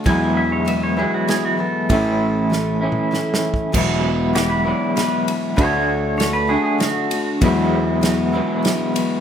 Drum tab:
CC |------------------|------------------|x-----------------|------------------|
RD |x-----x-----x-----|x-----------------|------x-----x--x--|x-----x-----x--x--|
SD |------------o-----|------o-----o-o---|------o-----o-----|------o-----o-----|
T2 |------------------|----------o-------|------------------|------------------|
BD |o-----------------|o---------------o-|o-----------------|o-----------------|

CC |------------------|
RD |x-----x-----x--x--|
SD |------o-----o-----|
T2 |------------------|
BD |o-----------------|